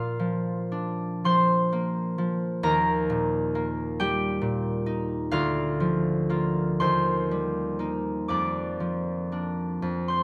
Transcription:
0.00 2.65 A#2 medium
0.00 0.18 F3 soft
0.00 0.41 A#3 soft
0.00 0.43 D4 soft
0.00 2.66 F4 medium
0.00 0.48 A#4 medium
0.00 2.65 F5 loud
0.00 0.47 A#5 medium
0.19 1.23 F3 medium
0.72 2.65 D4 medium
1.24 2.17 F3 medium
1.24 2.66 C5 medium
1.24 3.58 C6 loud
1.72 3.54 A#3 medium
2.18 2.66 F3 medium
2.63 5.35 D#2 medium
2.63 6.55 A#4 medium
2.63 6.54 A#5 loud
3.10 4.40 A#2 medium
3.55 6.28 A#3 medium
4.00 5.35 G3 medium
4.00 5.36 G4 medium
4.00 5.35 G5 loud
4.41 5.34 A#2 medium
4.86 5.35 D#4 medium
5.31 6.84 D2 medium
5.31 6.29 F4 medium
5.31 6.84 F5 loud
5.80 6.84 F3 medium
6.29 7.78 A#3 medium
6.29 6.84 F4 medium
6.80 8.32 D#2 medium
6.80 8.32 C5 medium
6.80 9.35 C6 loud
7.31 8.33 G3 medium
7.79 9.30 A#3 soft
7.79 8.33 D#4 medium
8.28 9.81 F2 medium
8.28 10.08 D5 medium
8.28 10.07 D6 medium
8.80 10.23 F3 soft
9.32 9.86 A#3 soft
9.32 9.86 D4 soft
9.82 10.23 F2 medium
10.08 10.23 C5 medium
10.08 10.23 C6 medium

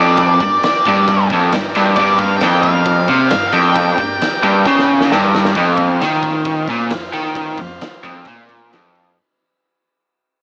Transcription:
0.00 0.41 F2 loud
0.00 1.93 G4 medium
0.00 1.94 A#4 medium
0.00 0.63 D5 loud
0.00 1.94 D5 medium
0.17 kick loud
0.17 ride loud
0.40 0.60 G2 medium
0.40 kick medium
0.40 ride medium
0.63 1.27 D5 medium
0.63 snare medium
0.63 ride medium
0.85 1.31 G2 loud
0.85 kick medium
0.85 ride medium
1.08 kick loud
1.08 ride medium
1.30 1.53 F2 loud
1.30 kick medium
1.30 ride medium
1.52 1.71 G2 medium
1.52 snare loud
1.52 ride medium
1.75 1.97 G2 loud
1.75 ride medium
1.96 2.42 G2 loud
1.96 5.53 G4 medium
1.96 5.54 A#4 medium
1.96 2.20 D5 medium
1.96 kick loud
1.96 ride loud
2.01 5.54 D5 medium
2.18 2.36 F5 loud
2.18 kick medium
2.18 ride medium
2.37 2.60 G5 loud
2.41 3.09 F2 loud
2.41 snare loud
2.41 ride medium
2.62 3.27 F5 loud
2.62 kick medium
2.62 ride medium
2.85 kick loud
2.85 ride medium
3.08 3.31 C3 loud
3.08 kick medium
3.08 ride medium
3.28 3.50 G2 medium
3.28 3.46 F5 medium
3.28 snare loud
3.28 ride loud
3.48 3.53 F5 medium
3.53 3.98 F2 loud
3.53 5.07 G5 loud
3.53 ride medium
3.76 kick loud
3.76 ride loud
3.98 4.18 G2 medium
3.98 kick medium
3.98 ride medium
4.22 snare loud
4.22 ride medium
4.43 4.66 G2 loud
4.43 4.66 F5 medium
4.43 kick medium
4.43 ride medium
4.66 5.11 C#3 loud
4.66 5.09 G5 medium
4.66 kick loud
4.66 snare medium
4.79 snare medium
5.01 snare medium
5.08 5.56 G2 loud
5.08 5.52 A#5 medium
5.08 snare medium
5.35 snare loud
5.45 snare medium
5.54 6.01 F2 medium
5.54 9.13 F4 medium
5.54 9.14 C5 medium
5.54 8.94 F5 medium
5.54 kick loud
5.54 ride loud
5.77 kick medium
5.77 ride medium
6.01 6.68 D#3 loud
6.01 snare loud
6.01 ride medium
6.23 kick medium
6.23 ride medium
6.45 kick loud
6.45 ride medium
6.68 6.91 A#2 medium
6.68 kick medium
6.68 ride medium
6.90 7.09 F2 medium
6.90 snare loud
6.90 ride medium
7.13 7.59 D#3 loud
7.13 ride medium
7.35 kick loud
7.35 ride medium
7.57 7.77 F2 medium
7.57 kick medium
7.57 ride medium
7.81 snare loud
7.81 ride medium
8.04 8.27 F2 loud
8.04 kick medium
8.04 ride medium
8.25 8.72 A#2 loud
8.25 kick loud
8.25 ride medium
8.49 8.62 A#5 medium
8.49 kick medium
8.49 ride medium
8.61 8.71 A5 medium
8.73 9.18 F2 medium
8.73 8.95 G5 medium
8.73 snare loud
8.73 ride medium
8.95 9.16 F5 medium
8.95 ride medium

